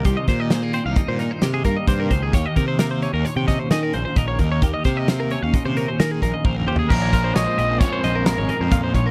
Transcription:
<<
  \new Staff \with { instrumentName = "Clean electric guitar" } { \time 5/4 \key ees \mixolydian \tempo 4 = 132 g'16 ees''16 c''16 ees''16 c''16 aes'16 c''16 f''16 ees''16 c''16 bes'16 c''16 bes'16 aes'16 bes'16 ees''16 c''16 bes'16 c''16 aes'16 | des''16 ees''16 bes'16 c''16 bes'16 c''16 des''16 bes'16 des''16 g''16 ees''16 c''16 ees''16 bes'16 c''16 c''16 ees''16 des''16 bes'16 des''16 | bes'16 ees''16 c''16 ees''16 c''16 bes'16 des''16 f''16 ees''16 c''16 bes'16 c''16 bes'16 aes'16 bes'16 ees''16 c''16 bes'16 c''16 aes'16 | bes'16 des''16 bes'16 c''16 des''16 c''16 ees''16 c''16 des''16 c''16 ees''16 bes'16 bes'16 des''16 bes'16 c''16 f''16 c''16 des''16 bes'16 | }
  \new Staff \with { instrumentName = "Trumpet" } { \time 5/4 \key ees \mixolydian r1 r4 | r1 r4 | r1 r8 g'8 | bes'4 ees''4 des''8 c''8 bes'4. r8 | }
  \new Staff \with { instrumentName = "Clean electric guitar" } { \time 5/4 \key ees \mixolydian << { g'4 aes16 bes16 c'16 ees'8. ees'8 g'8 bes8 g'4 | g'4 bes8 des'4 des'8 aes'8 bes8 bes'4 | g'4 bes8 des'4 des'8 aes'8 bes8 bes'4 | r4 aes8 c'4 r8 aes8 ees'4. | } \\ { <c ees>8 ees4. g,2 c8 ees8 | ees,8 ees4. bes,2 ees,8 ees8 | ees,8 ees4. bes,2 ees,8 ees8 | bes,8 f4. f,2 bes,8 f8 | } >> }
  \new Staff \with { instrumentName = "Overdriven electric guitar" } { \clef bass \time 5/4 \key ees \mixolydian r1 r4 | r1 r4 | r1 r4 | <bes, f bes des'>2 <bes, f bes des'>2. | }
  \new Staff \with { instrumentName = "Picked electric bass" } { \clef bass \time 5/4 \key ees \mixolydian c,16 r16 bes,4~ bes,16 c,16 r16 bes,8 r16 c8 g,16 r16 g,8 des,8 | ees,16 r16 c4~ c16 ees,16 r16 c8 r16 ees8 bes,,16 r16 bes,,8 ees,8 | ees,16 r16 c4~ c16 ees,16 r16 c8 r16 ees8 bes,,16 r16 bes,,8 ees,8 | bes,,4 bes,,16 r16 bes,,8 r8 bes,,8. aes,,16 r16 f,8. bes,,8 | }
  \new DrumStaff \with { instrumentName = "Drums" } \drummode { \time 5/4 <hh bd>8 <hh bd sn>8 <hh sn>8 hh8 <hh bd>8 <hh sn>8 <hh sn>8 <hh bd>8 <hh bd>8 <hh bd>8 | <hh bd>8 <hh bd>8 <hh sn>8 hh8 hh8 <hh bd sn>8 <hh sn>8 hh8 <hh bd>8 <hh bd>8 | <hh bd>8 <hh bd sn>8 <hh sn>8 hh8 <hh bd>8 hh8 <hh sn>8 <hh bd>8 \tuplet 3/2 { <bd tommh>8 toml8 tomfh8 } | <cymc bd>8 <hh bd>8 <hh sn>8 hh8 <hh bd>8 <hh sn>8 <hh sn>8 hh8 <hh bd>8 <hh bd>8 | }
>>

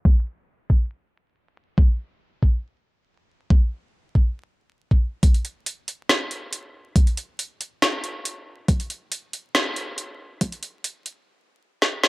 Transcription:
\new DrumStaff \with { instrumentName = "Drums" } \drummode { \time 4/4 \tempo 4 = 139 bd4 r8 bd8 r4 r4 | bd4 r8 bd8 r4 r4 | bd4 r8 bd8 r4 r16 bd8. | <hh bd>16 hh16 hh8 hh8 hh8 <hh sn>8 hh8 hh4 |
<hh bd>16 hh16 hh8 hh8 hh8 <hh sn>8 hh8 hh4 | <hh bd>16 hh16 hh8 hh8 hh8 <hh sn>8 hh8 hh4 | <hh bd>16 hh16 hh8 hh8 hh8 r4 r16 sn8 sn16 | }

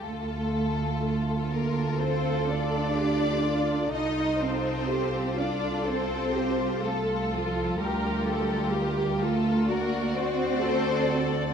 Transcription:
<<
  \new Staff \with { instrumentName = "Violin section" } { \time 4/4 \key d \phrygian \tempo 4 = 62 a'4. bes'8 c''8 d''4. | ees''8 c''4 d''8 c''4 a'8 f'8 | g'4. a'8 bes'8 c''4. | }
  \new Staff \with { instrumentName = "Violin section" } { \time 4/4 \key d \phrygian << { a'1 | a'1 | bes'2 d''2 | } \\ { f'1 | f'1~ | f'2 fis'2 | } >> }
  \new Staff \with { instrumentName = "Viola section" } { \time 4/4 \key d \phrygian r2 a'4 g'8 f'8 | ees'4 g'8 f'8 a'8 g'8 a'4 | bes'8 a'8 g'8 f'8 fis'4 a'4 | }
  \new Staff \with { instrumentName = "Cello section" } { \time 4/4 \key d \phrygian a4. bes8 c'8 d'4. | ees'8 c'4 d'8 c'4 a8 f8 | g4. a8 bes8 c'4. | }
  \new Staff \with { instrumentName = "Double bass section" } { \clef bass \time 4/4 \key d \phrygian d,1 | c,1 | d,1 | }
>>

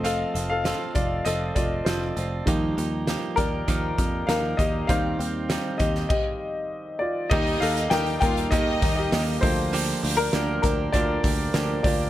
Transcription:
<<
  \new Staff \with { instrumentName = "Violin section" } { \time 4/4 \key ees \lydian \tempo 4 = 99 r1 | r1 | r1 | <ees' ees''>4 <g' g''>8 <f' f''>8 <ees' ees''>4. r8 |
r1 | }
  \new Staff \with { instrumentName = "Grand piano" } { \time 4/4 \key ees \lydian <a' f''>8. <a' f''>8. <f' d''>8 <a' ees''>8 <f' d''>8 <f' c''>8. r16 | r4. <bes' d''>4. <bes' f''>8 <g' ees''>8 | <c'' f''>4. <g' ees''>8 <g' ees''>4. <f' d''>8 | <g' ees''>8 <a' f''>8 <bes' g''>8 <bes' g''>8 <g' ees''>8. <g' ees''>8. <f' c''>8~ |
<f' c''>8. <d' bes'>8. <d' bes'>8 <f' d''>4. <f' d''>8 | }
  \new Staff \with { instrumentName = "Grand piano" } { \clef bass \time 4/4 \key ees \lydian <f a c'>4 r2. | <f g ees'>1 | <ees g c'>1 | r4. <ees g bes>8 r4. <f bes a'>8 |
r1 | }
  \new Staff \with { instrumentName = "Clean electric guitar" } { \time 4/4 \key ees \lydian <f c' f' a'>8 <c' f' a'>8 <f c' f' a'>8 <c' f' a'>8 <f c' f' a'>8 <c' f' a'>8 <f c' f' a'>8 <c' f' a'>8 | <ees f bes ees' g'>8 <bes ees' g'>8 <f bes ees' g'>8 <bes ees' g'>8 <ees f bes ees' g'>8 <bes ees' g'>8 <f bes ees' g'>8 <bes ees' g'>8 | <ees g c' ees' g'>8 <c' ees' g'>8 <g c' ees' g'>8 <c' ees' g'>8 r2 | <ees g bes ees' g'>8 <bes ees' g'>8 <g bes ees' g'>8 <bes ees' g'>8 <ees g bes ees' g'>8 <bes ees' g'>8 <g bes ees' g'>8 <bes d' g'>8 |
<d f bes d' g'>8 <bes d' g'>8 <f bes d' g'>8 <bes d' g'>8 <d f bes d' g'>8 <bes d' g'>8 <f bes d' g'>8 <bes d' g'>8 | }
  \new Staff \with { instrumentName = "Picked electric bass" } { \clef bass \time 4/4 \key ees \lydian f,,8 f,,8. r16 f,,8 f,,8 f,,8 f,,8 f,,8 | ees,8 ees,8. r16 ees,8 ees,8 f,8 ees,8 ees,8 | ees,8 ees,8. r16 ees,8 r2 | ees,8 ees,8 ees,8 ees,8 ees,8 ees,8 ees,8 d,8~ |
d,8 d,8 d,8 d,8 d,8 d,8 d,8 d,8 | }
  \new DrumStaff \with { instrumentName = "Drums" } \drummode { \time 4/4 hh8 hh8 <hh sn>8 <hh bd>8 hh8 <hh bd>8 <hh sn>8 hh8 | <hh bd>8 hh8 <hh sn>8 <hh bd>8 <hh bd>8 <hh bd>8 <hh sn>8 <hh bd>8 | <hh bd>8 hh8 <hh sn>8 <hh bd>16 sn16 <cymc bd>4 r4 | <cymc bd>16 hho16 <hho hhp>16 hhp16 <hho hhp sn>16 hho16 <hho hhp bd>16 hhp16 <hho hhp bd>8 <hho hhp bd>8 <hho hhp sn>8 <hho hhp bd>8 |
<hho hhp>8 <hho hhp>8 <hho hhp sn>8 <hho hhp bd>8 <hho hhp bd>8 <hho hhp bd>8 <hho hhp sn>8 <hho hhp bd>8 | }
>>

